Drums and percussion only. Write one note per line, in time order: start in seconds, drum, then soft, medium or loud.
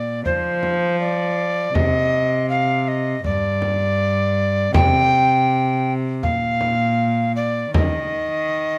0.26 frame drum soft
0.63 frame drum soft
1.75 frame drum medium
3.24 frame drum soft
3.62 frame drum soft
4.74 frame drum medium
6.23 frame drum soft
6.61 frame drum soft
7.74 frame drum medium